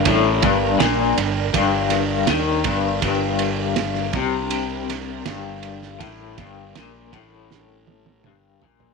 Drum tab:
RD |x-x-x-x-x-x-x-x-|x-x-x-x-x-x-x-x-|x-x-x-x---------|
SD |----o-----o-o---|----oo----o-o--o|----o---o-------|
T1 |----------------|----------------|----------oo----|
T2 |----------------|----------------|------------o---|
FT |----------------|----------------|--------------oo|
BD |o-o-----o-----o-|o-----o---------|o-o---o---------|